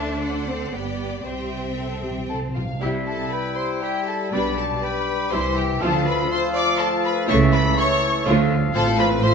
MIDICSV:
0, 0, Header, 1, 12, 480
1, 0, Start_track
1, 0, Key_signature, 0, "major"
1, 0, Tempo, 510204
1, 1177, Time_signature, 3, 2, 24, 8
1, 4069, Tempo, 498339
1, 5989, Tempo, 486618
1, 8973, End_track
2, 0, Start_track
2, 0, Title_t, "Flute"
2, 0, Program_c, 0, 73
2, 2158, Note_on_c, 0, 81, 59
2, 2214, Note_off_c, 0, 81, 0
2, 2401, Note_on_c, 0, 77, 55
2, 2639, Note_off_c, 0, 77, 0
2, 2647, Note_on_c, 0, 79, 63
2, 2704, Note_off_c, 0, 79, 0
2, 2889, Note_on_c, 0, 81, 65
2, 2946, Note_off_c, 0, 81, 0
2, 3131, Note_on_c, 0, 83, 64
2, 3187, Note_off_c, 0, 83, 0
2, 3363, Note_on_c, 0, 84, 77
2, 3599, Note_on_c, 0, 79, 75
2, 3613, Note_off_c, 0, 84, 0
2, 3841, Note_on_c, 0, 81, 70
2, 3855, Note_off_c, 0, 79, 0
2, 4072, Note_on_c, 0, 83, 75
2, 4087, Note_off_c, 0, 81, 0
2, 4306, Note_off_c, 0, 83, 0
2, 4311, Note_on_c, 0, 81, 74
2, 4545, Note_off_c, 0, 81, 0
2, 4554, Note_on_c, 0, 83, 77
2, 5028, Note_on_c, 0, 84, 84
2, 5043, Note_off_c, 0, 83, 0
2, 5264, Note_on_c, 0, 79, 84
2, 5279, Note_off_c, 0, 84, 0
2, 5511, Note_on_c, 0, 81, 89
2, 5526, Note_off_c, 0, 79, 0
2, 5748, Note_off_c, 0, 81, 0
2, 5753, Note_on_c, 0, 83, 91
2, 5989, Note_on_c, 0, 84, 86
2, 6004, Note_off_c, 0, 83, 0
2, 6226, Note_on_c, 0, 86, 97
2, 6241, Note_off_c, 0, 84, 0
2, 6466, Note_off_c, 0, 86, 0
2, 6472, Note_on_c, 0, 81, 87
2, 6706, Note_off_c, 0, 81, 0
2, 6710, Note_on_c, 0, 83, 98
2, 6770, Note_off_c, 0, 83, 0
2, 6949, Note_on_c, 0, 85, 98
2, 7186, Note_on_c, 0, 83, 101
2, 7201, Note_off_c, 0, 85, 0
2, 7427, Note_on_c, 0, 85, 93
2, 7442, Note_off_c, 0, 83, 0
2, 7911, Note_off_c, 0, 85, 0
2, 8396, Note_on_c, 0, 81, 99
2, 8630, Note_on_c, 0, 83, 99
2, 8645, Note_off_c, 0, 81, 0
2, 8866, Note_on_c, 0, 84, 102
2, 8881, Note_off_c, 0, 83, 0
2, 8973, Note_off_c, 0, 84, 0
2, 8973, End_track
3, 0, Start_track
3, 0, Title_t, "Violin section"
3, 0, Program_c, 1, 48
3, 0, Note_on_c, 1, 74, 69
3, 444, Note_off_c, 1, 74, 0
3, 461, Note_on_c, 1, 72, 60
3, 689, Note_off_c, 1, 72, 0
3, 693, Note_on_c, 1, 71, 61
3, 1168, Note_off_c, 1, 71, 0
3, 1177, Note_on_c, 1, 72, 56
3, 2154, Note_off_c, 1, 72, 0
3, 2160, Note_on_c, 1, 81, 65
3, 2235, Note_off_c, 1, 81, 0
3, 2397, Note_on_c, 1, 77, 64
3, 2636, Note_off_c, 1, 77, 0
3, 2639, Note_on_c, 1, 79, 70
3, 2880, Note_off_c, 1, 79, 0
3, 2883, Note_on_c, 1, 81, 78
3, 3111, Note_on_c, 1, 83, 77
3, 3116, Note_off_c, 1, 81, 0
3, 3351, Note_on_c, 1, 84, 90
3, 3353, Note_off_c, 1, 83, 0
3, 3426, Note_off_c, 1, 84, 0
3, 3588, Note_on_c, 1, 79, 86
3, 3824, Note_off_c, 1, 79, 0
3, 3831, Note_on_c, 1, 81, 80
3, 3907, Note_off_c, 1, 81, 0
3, 4064, Note_on_c, 1, 83, 86
3, 4302, Note_off_c, 1, 83, 0
3, 4312, Note_on_c, 1, 81, 91
3, 4550, Note_off_c, 1, 81, 0
3, 4555, Note_on_c, 1, 83, 93
3, 5030, Note_on_c, 1, 84, 94
3, 5032, Note_off_c, 1, 83, 0
3, 5269, Note_on_c, 1, 79, 87
3, 5270, Note_off_c, 1, 84, 0
3, 5346, Note_off_c, 1, 79, 0
3, 5504, Note_on_c, 1, 81, 95
3, 5742, Note_off_c, 1, 81, 0
3, 5752, Note_on_c, 1, 83, 109
3, 5989, Note_off_c, 1, 83, 0
3, 5993, Note_on_c, 1, 84, 112
3, 6072, Note_off_c, 1, 84, 0
3, 6230, Note_on_c, 1, 86, 122
3, 6466, Note_off_c, 1, 86, 0
3, 6470, Note_on_c, 1, 81, 114
3, 6708, Note_on_c, 1, 83, 106
3, 6710, Note_off_c, 1, 81, 0
3, 6787, Note_off_c, 1, 83, 0
3, 6948, Note_on_c, 1, 85, 113
3, 7027, Note_off_c, 1, 85, 0
3, 7192, Note_on_c, 1, 83, 121
3, 7426, Note_off_c, 1, 83, 0
3, 7429, Note_on_c, 1, 85, 117
3, 7912, Note_off_c, 1, 85, 0
3, 8389, Note_on_c, 1, 81, 107
3, 8468, Note_off_c, 1, 81, 0
3, 8625, Note_on_c, 1, 83, 121
3, 8704, Note_off_c, 1, 83, 0
3, 8869, Note_on_c, 1, 84, 116
3, 8973, Note_off_c, 1, 84, 0
3, 8973, End_track
4, 0, Start_track
4, 0, Title_t, "Clarinet"
4, 0, Program_c, 2, 71
4, 2644, Note_on_c, 2, 76, 68
4, 3127, Note_on_c, 2, 79, 75
4, 3141, Note_off_c, 2, 76, 0
4, 3606, Note_on_c, 2, 76, 72
4, 3620, Note_off_c, 2, 79, 0
4, 4055, Note_off_c, 2, 76, 0
4, 4061, Note_on_c, 2, 74, 77
4, 4559, Note_on_c, 2, 79, 79
4, 4573, Note_off_c, 2, 74, 0
4, 5028, Note_on_c, 2, 76, 75
4, 5043, Note_off_c, 2, 79, 0
4, 5504, Note_off_c, 2, 76, 0
4, 5510, Note_on_c, 2, 77, 84
4, 5978, Note_off_c, 2, 77, 0
4, 5992, Note_on_c, 2, 77, 95
4, 6932, Note_off_c, 2, 77, 0
4, 6946, Note_on_c, 2, 76, 96
4, 7437, Note_on_c, 2, 73, 91
4, 7452, Note_off_c, 2, 76, 0
4, 7909, Note_off_c, 2, 73, 0
4, 7915, Note_on_c, 2, 77, 107
4, 8715, Note_off_c, 2, 77, 0
4, 8883, Note_on_c, 2, 76, 93
4, 8973, Note_off_c, 2, 76, 0
4, 8973, End_track
5, 0, Start_track
5, 0, Title_t, "Violin section"
5, 0, Program_c, 3, 48
5, 0, Note_on_c, 3, 76, 51
5, 0, Note_on_c, 3, 81, 58
5, 191, Note_off_c, 3, 81, 0
5, 224, Note_off_c, 3, 76, 0
5, 225, Note_on_c, 3, 78, 54
5, 226, Note_on_c, 3, 74, 54
5, 683, Note_off_c, 3, 74, 0
5, 693, Note_off_c, 3, 78, 0
5, 694, Note_on_c, 3, 74, 53
5, 696, Note_on_c, 3, 79, 51
5, 1168, Note_off_c, 3, 79, 0
5, 1169, Note_off_c, 3, 74, 0
5, 1177, Note_on_c, 3, 76, 50
5, 1179, Note_on_c, 3, 79, 53
5, 2136, Note_off_c, 3, 79, 0
5, 2155, Note_off_c, 3, 76, 0
5, 2157, Note_on_c, 3, 69, 58
5, 2232, Note_off_c, 3, 69, 0
5, 2399, Note_on_c, 3, 65, 51
5, 2474, Note_off_c, 3, 65, 0
5, 2642, Note_on_c, 3, 67, 68
5, 2718, Note_off_c, 3, 67, 0
5, 2880, Note_on_c, 3, 69, 66
5, 3113, Note_on_c, 3, 71, 74
5, 3114, Note_off_c, 3, 69, 0
5, 3349, Note_on_c, 3, 72, 72
5, 3354, Note_off_c, 3, 71, 0
5, 3588, Note_on_c, 3, 67, 72
5, 3591, Note_off_c, 3, 72, 0
5, 3823, Note_on_c, 3, 69, 75
5, 3829, Note_off_c, 3, 67, 0
5, 4063, Note_off_c, 3, 69, 0
5, 4063, Note_on_c, 3, 71, 84
5, 4301, Note_off_c, 3, 71, 0
5, 4303, Note_on_c, 3, 69, 73
5, 4381, Note_off_c, 3, 69, 0
5, 4537, Note_on_c, 3, 71, 86
5, 5013, Note_off_c, 3, 71, 0
5, 5018, Note_on_c, 3, 72, 91
5, 5258, Note_on_c, 3, 67, 82
5, 5264, Note_off_c, 3, 72, 0
5, 5500, Note_on_c, 3, 69, 88
5, 5504, Note_off_c, 3, 67, 0
5, 5738, Note_on_c, 3, 71, 80
5, 5745, Note_off_c, 3, 69, 0
5, 5976, Note_on_c, 3, 72, 96
5, 5977, Note_off_c, 3, 71, 0
5, 6210, Note_on_c, 3, 74, 92
5, 6218, Note_off_c, 3, 72, 0
5, 6449, Note_on_c, 3, 69, 94
5, 6455, Note_off_c, 3, 74, 0
5, 6528, Note_off_c, 3, 69, 0
5, 6694, Note_on_c, 3, 71, 93
5, 6937, Note_off_c, 3, 71, 0
5, 6937, Note_on_c, 3, 73, 103
5, 7016, Note_off_c, 3, 73, 0
5, 7180, Note_on_c, 3, 71, 95
5, 7259, Note_off_c, 3, 71, 0
5, 7426, Note_on_c, 3, 73, 106
5, 7900, Note_off_c, 3, 73, 0
5, 8379, Note_on_c, 3, 69, 108
5, 8605, Note_off_c, 3, 69, 0
5, 8624, Note_on_c, 3, 71, 95
5, 8863, Note_on_c, 3, 72, 106
5, 8865, Note_off_c, 3, 71, 0
5, 8973, Note_off_c, 3, 72, 0
5, 8973, End_track
6, 0, Start_track
6, 0, Title_t, "Oboe"
6, 0, Program_c, 4, 68
6, 2647, Note_on_c, 4, 64, 63
6, 4073, Note_on_c, 4, 67, 65
6, 4088, Note_off_c, 4, 64, 0
6, 5501, Note_off_c, 4, 67, 0
6, 5507, Note_on_c, 4, 69, 81
6, 8349, Note_off_c, 4, 69, 0
6, 8385, Note_on_c, 4, 72, 89
6, 8493, Note_off_c, 4, 72, 0
6, 8624, Note_on_c, 4, 72, 66
6, 8733, Note_off_c, 4, 72, 0
6, 8857, Note_on_c, 4, 72, 73
6, 8968, Note_off_c, 4, 72, 0
6, 8973, End_track
7, 0, Start_track
7, 0, Title_t, "Viola section"
7, 0, Program_c, 5, 48
7, 0, Note_on_c, 5, 69, 58
7, 0, Note_on_c, 5, 72, 59
7, 188, Note_off_c, 5, 72, 0
7, 189, Note_off_c, 5, 69, 0
7, 219, Note_on_c, 5, 69, 54
7, 221, Note_on_c, 5, 72, 52
7, 681, Note_off_c, 5, 69, 0
7, 681, Note_off_c, 5, 72, 0
7, 688, Note_on_c, 5, 74, 53
7, 689, Note_on_c, 5, 67, 55
7, 1162, Note_off_c, 5, 67, 0
7, 1173, Note_on_c, 5, 67, 51
7, 1174, Note_on_c, 5, 72, 50
7, 1176, Note_off_c, 5, 74, 0
7, 1608, Note_off_c, 5, 67, 0
7, 1617, Note_off_c, 5, 72, 0
7, 1666, Note_on_c, 5, 69, 60
7, 1894, Note_off_c, 5, 69, 0
7, 1914, Note_on_c, 5, 67, 50
7, 2148, Note_on_c, 5, 69, 53
7, 2156, Note_off_c, 5, 67, 0
7, 2224, Note_off_c, 5, 69, 0
7, 2392, Note_on_c, 5, 67, 42
7, 2467, Note_off_c, 5, 67, 0
7, 2640, Note_on_c, 5, 64, 62
7, 2641, Note_on_c, 5, 55, 64
7, 2864, Note_off_c, 5, 64, 0
7, 2865, Note_off_c, 5, 55, 0
7, 4064, Note_on_c, 5, 55, 68
7, 4065, Note_on_c, 5, 62, 69
7, 4290, Note_off_c, 5, 55, 0
7, 4290, Note_off_c, 5, 62, 0
7, 5022, Note_on_c, 5, 64, 70
7, 5025, Note_on_c, 5, 55, 72
7, 5249, Note_off_c, 5, 64, 0
7, 5250, Note_off_c, 5, 55, 0
7, 5505, Note_on_c, 5, 53, 79
7, 5505, Note_on_c, 5, 65, 77
7, 5731, Note_off_c, 5, 53, 0
7, 5731, Note_off_c, 5, 65, 0
7, 6940, Note_on_c, 5, 57, 92
7, 6940, Note_on_c, 5, 64, 85
7, 7167, Note_off_c, 5, 57, 0
7, 7167, Note_off_c, 5, 64, 0
7, 7910, Note_on_c, 5, 57, 83
7, 7911, Note_on_c, 5, 65, 94
7, 8134, Note_off_c, 5, 57, 0
7, 8134, Note_off_c, 5, 65, 0
7, 8386, Note_on_c, 5, 65, 87
7, 8388, Note_on_c, 5, 57, 83
7, 8498, Note_off_c, 5, 65, 0
7, 8499, Note_off_c, 5, 57, 0
7, 8506, Note_on_c, 5, 60, 75
7, 8507, Note_on_c, 5, 69, 76
7, 8624, Note_on_c, 5, 65, 74
7, 8626, Note_off_c, 5, 60, 0
7, 8626, Note_on_c, 5, 57, 76
7, 8627, Note_off_c, 5, 69, 0
7, 8746, Note_off_c, 5, 65, 0
7, 8747, Note_off_c, 5, 57, 0
7, 8748, Note_on_c, 5, 69, 76
7, 8750, Note_on_c, 5, 60, 74
7, 8868, Note_off_c, 5, 69, 0
7, 8869, Note_off_c, 5, 60, 0
7, 8869, Note_on_c, 5, 57, 72
7, 8871, Note_on_c, 5, 65, 71
7, 8973, Note_off_c, 5, 57, 0
7, 8973, Note_off_c, 5, 65, 0
7, 8973, End_track
8, 0, Start_track
8, 0, Title_t, "French horn section"
8, 0, Program_c, 6, 60
8, 2636, Note_on_c, 6, 55, 59
8, 2636, Note_on_c, 6, 64, 59
8, 4027, Note_off_c, 6, 64, 0
8, 4070, Note_on_c, 6, 62, 58
8, 5030, Note_off_c, 6, 62, 0
8, 5031, Note_on_c, 6, 64, 64
8, 5468, Note_off_c, 6, 55, 0
8, 5507, Note_on_c, 6, 65, 80
8, 5511, Note_off_c, 6, 64, 0
8, 5511, Note_on_c, 6, 57, 72
8, 6919, Note_off_c, 6, 65, 0
8, 6949, Note_on_c, 6, 64, 85
8, 7912, Note_off_c, 6, 64, 0
8, 7913, Note_on_c, 6, 65, 80
8, 8208, Note_off_c, 6, 57, 0
8, 8240, Note_off_c, 6, 65, 0
8, 8375, Note_on_c, 6, 65, 84
8, 8377, Note_on_c, 6, 60, 86
8, 8826, Note_off_c, 6, 65, 0
8, 8827, Note_off_c, 6, 60, 0
8, 8860, Note_on_c, 6, 60, 86
8, 8864, Note_on_c, 6, 65, 86
8, 8973, Note_off_c, 6, 60, 0
8, 8973, Note_off_c, 6, 65, 0
8, 8973, End_track
9, 0, Start_track
9, 0, Title_t, "Bassoon"
9, 0, Program_c, 7, 70
9, 2642, Note_on_c, 7, 55, 61
9, 5027, Note_on_c, 7, 52, 62
9, 5042, Note_off_c, 7, 55, 0
9, 5510, Note_on_c, 7, 53, 79
9, 5525, Note_off_c, 7, 52, 0
9, 6937, Note_off_c, 7, 53, 0
9, 6942, Note_on_c, 7, 52, 84
9, 7905, Note_on_c, 7, 53, 80
9, 7920, Note_off_c, 7, 52, 0
9, 8384, Note_off_c, 7, 53, 0
9, 8390, Note_on_c, 7, 53, 80
9, 8497, Note_off_c, 7, 53, 0
9, 8627, Note_on_c, 7, 53, 76
9, 8735, Note_off_c, 7, 53, 0
9, 8866, Note_on_c, 7, 53, 70
9, 8973, Note_off_c, 7, 53, 0
9, 8973, End_track
10, 0, Start_track
10, 0, Title_t, "Cello section"
10, 0, Program_c, 8, 48
10, 0, Note_on_c, 8, 62, 82
10, 442, Note_off_c, 8, 62, 0
10, 451, Note_on_c, 8, 60, 72
10, 689, Note_off_c, 8, 60, 0
10, 690, Note_on_c, 8, 59, 70
10, 1172, Note_on_c, 8, 60, 69
10, 1176, Note_off_c, 8, 59, 0
10, 2372, Note_off_c, 8, 60, 0
10, 2641, Note_on_c, 8, 48, 72
10, 3040, Note_off_c, 8, 48, 0
10, 4068, Note_on_c, 8, 47, 81
10, 4468, Note_off_c, 8, 47, 0
10, 5026, Note_on_c, 8, 48, 80
10, 5428, Note_off_c, 8, 48, 0
10, 5506, Note_on_c, 8, 50, 88
10, 5907, Note_off_c, 8, 50, 0
10, 6948, Note_on_c, 8, 49, 105
10, 7348, Note_off_c, 8, 49, 0
10, 7910, Note_on_c, 8, 50, 97
10, 8309, Note_off_c, 8, 50, 0
10, 8383, Note_on_c, 8, 45, 97
10, 8973, Note_off_c, 8, 45, 0
10, 8973, End_track
11, 0, Start_track
11, 0, Title_t, "Timpani"
11, 0, Program_c, 10, 47
11, 1173, Note_on_c, 10, 48, 29
11, 1235, Note_off_c, 10, 48, 0
11, 1247, Note_on_c, 10, 48, 30
11, 1311, Note_off_c, 10, 48, 0
11, 1322, Note_on_c, 10, 48, 30
11, 1381, Note_off_c, 10, 48, 0
11, 1465, Note_on_c, 10, 48, 33
11, 1526, Note_off_c, 10, 48, 0
11, 1538, Note_on_c, 10, 48, 32
11, 1601, Note_off_c, 10, 48, 0
11, 1612, Note_on_c, 10, 48, 34
11, 1675, Note_off_c, 10, 48, 0
11, 1686, Note_on_c, 10, 48, 38
11, 1747, Note_off_c, 10, 48, 0
11, 1759, Note_on_c, 10, 48, 38
11, 1823, Note_off_c, 10, 48, 0
11, 1834, Note_on_c, 10, 48, 40
11, 1895, Note_off_c, 10, 48, 0
11, 1906, Note_on_c, 10, 48, 48
11, 1971, Note_off_c, 10, 48, 0
11, 1982, Note_on_c, 10, 48, 51
11, 2040, Note_off_c, 10, 48, 0
11, 2051, Note_on_c, 10, 48, 52
11, 2116, Note_off_c, 10, 48, 0
11, 2128, Note_on_c, 10, 48, 56
11, 2191, Note_off_c, 10, 48, 0
11, 2202, Note_on_c, 10, 48, 63
11, 2263, Note_off_c, 10, 48, 0
11, 2274, Note_on_c, 10, 48, 58
11, 2333, Note_off_c, 10, 48, 0
11, 2345, Note_on_c, 10, 48, 60
11, 2410, Note_off_c, 10, 48, 0
11, 2421, Note_on_c, 10, 48, 69
11, 2485, Note_off_c, 10, 48, 0
11, 2496, Note_on_c, 10, 48, 79
11, 2559, Note_off_c, 10, 48, 0
11, 2570, Note_on_c, 10, 48, 76
11, 2637, Note_off_c, 10, 48, 0
11, 8973, End_track
12, 0, Start_track
12, 0, Title_t, "Double bass section"
12, 0, Program_c, 11, 48
12, 0, Note_on_c, 11, 38, 57
12, 656, Note_off_c, 11, 38, 0
12, 692, Note_on_c, 11, 31, 56
12, 1178, Note_off_c, 11, 31, 0
12, 1181, Note_on_c, 11, 36, 51
12, 2425, Note_off_c, 11, 36, 0
12, 2642, Note_on_c, 11, 36, 62
12, 3040, Note_off_c, 11, 36, 0
12, 4069, Note_on_c, 11, 35, 71
12, 4468, Note_off_c, 11, 35, 0
12, 5029, Note_on_c, 11, 36, 82
12, 5429, Note_off_c, 11, 36, 0
12, 5508, Note_on_c, 11, 38, 81
12, 5908, Note_off_c, 11, 38, 0
12, 6951, Note_on_c, 11, 37, 97
12, 7350, Note_off_c, 11, 37, 0
12, 7911, Note_on_c, 11, 38, 97
12, 8310, Note_off_c, 11, 38, 0
12, 8389, Note_on_c, 11, 33, 94
12, 8973, Note_off_c, 11, 33, 0
12, 8973, End_track
0, 0, End_of_file